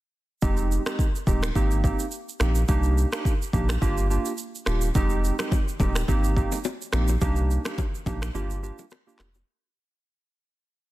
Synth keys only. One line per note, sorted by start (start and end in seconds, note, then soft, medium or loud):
0.42 0.82 G#3 medium
0.42 0.83 C4 medium
0.42 0.83 D#4 medium
0.42 0.83 G4 loud
0.86 1.07 G#3 medium
0.86 1.07 C4 medium
0.86 1.07 D#4 medium
0.86 1.07 G4 medium
1.27 1.49 G#3 medium
1.27 1.49 C4 medium
1.27 1.49 D#4 medium
1.27 1.50 G4 medium
1.55 1.82 A#3 medium
1.55 1.82 C4 medium
1.55 1.82 D#4 medium
1.55 1.82 G4 loud
1.84 2.06 A#3 medium
1.84 2.06 C4 medium
1.84 2.06 D#4 medium
1.84 2.06 G4 medium
2.40 2.62 A#3 medium
2.40 2.62 C4 medium
2.40 2.62 D#4 medium
2.40 2.63 G4 medium
2.68 3.09 A#3 medium
2.68 3.09 D4 medium
2.68 3.09 D#4 medium
2.68 3.09 G4 loud
3.12 3.33 A#3 medium
3.12 3.33 D4 medium
3.12 3.33 D#4 medium
3.12 3.33 G4 medium
3.54 3.76 A#3 medium
3.54 3.76 D4 medium
3.54 3.76 D#4 medium
3.54 3.76 G4 medium
3.81 4.08 A#3 medium
3.81 4.08 D4 medium
3.81 4.08 F4 medium
3.81 4.08 G4 loud
4.10 4.32 A#3 medium
4.10 4.32 D4 medium
4.10 4.32 F4 medium
4.10 4.32 G4 medium
4.67 4.89 A#3 medium
4.67 4.89 D4 medium
4.67 4.89 F4 medium
4.67 4.89 G4 medium
4.95 5.35 G#3 medium
4.95 5.36 C4 medium
4.95 5.36 D#4 medium
4.95 5.36 G4 loud
5.39 5.60 G#3 medium
5.39 5.60 C4 medium
5.39 5.60 D#4 medium
5.39 5.60 G4 medium
5.80 6.02 G#3 medium
5.80 6.02 C4 medium
5.80 6.02 D#4 medium
5.80 6.02 G4 medium
6.08 6.34 A#3 medium
6.08 6.35 C4 medium
6.08 6.35 D#4 medium
6.08 6.35 G4 loud
6.36 6.58 A#3 medium
6.36 6.59 C4 medium
6.36 6.59 D#4 medium
6.36 6.59 G4 medium
6.93 7.15 A#3 medium
6.93 7.15 C4 medium
6.93 7.15 D#4 medium
6.93 7.15 G4 medium
7.21 7.62 A#3 medium
7.21 7.62 D4 medium
7.21 7.62 D#4 medium
7.21 7.62 G4 loud
7.65 7.86 A#3 medium
7.65 7.86 D4 medium
7.65 7.86 D#4 medium
7.65 7.86 G4 medium
8.06 8.28 A#3 medium
8.06 8.29 D4 medium
8.06 8.29 D#4 medium
8.06 8.29 G4 medium
8.34 8.61 A#3 medium
8.34 8.61 D4 medium
8.34 8.61 F4 medium
8.34 8.61 G4 loud
8.63 8.85 A#3 medium
8.63 8.85 D4 medium
8.63 8.85 F4 medium
8.63 8.85 G4 medium
9.07 9.27 A#3 medium
9.07 9.28 D4 medium
9.07 9.28 F4 medium
9.07 9.28 G4 medium